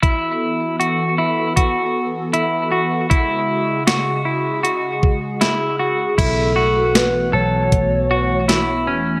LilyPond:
<<
  \new Staff \with { instrumentName = "Soft synth lead" } { \time 4/4 \key b \dorian \tempo 4 = 78 r1 | r2. gis'4 | a'4 b'8 cis''2 r8 | }
  \new Staff \with { instrumentName = "Clean electric guitar" } { \time 4/4 \key b \dorian e'4 fis'8 e'8 fis'4 e'8 fis'8 | e'4 fis'8 e'8 fis'4 e'8 fis'8 | e'8 fis'4 a'4 fis'8 e'8 cis'8 | }
  \new Staff \with { instrumentName = "Analog synth pad" } { \time 4/4 \key b \dorian << { <e b a'>1 | <cis gis gis'>1 | <e a fis'>1 | } \\ { fis'1~ | fis'1 | b1 | } >> }
  \new Staff \with { instrumentName = "Picked electric bass" } { \clef bass \time 4/4 \key b \dorian r1 | r1 | b,,4. b,,8 b,,4. e,,8 | }
  \new DrumStaff \with { instrumentName = "Drums" } \drummode { \time 4/4 <hh bd>4 hh4 <hh bd>4 hh4 | <hh bd>4 <hh sn>4 hh8 bd8 <hh sn>4 | <cymc hh bd>4 <hh sn>4 <hh bd>4 <hh sn>4 | }
>>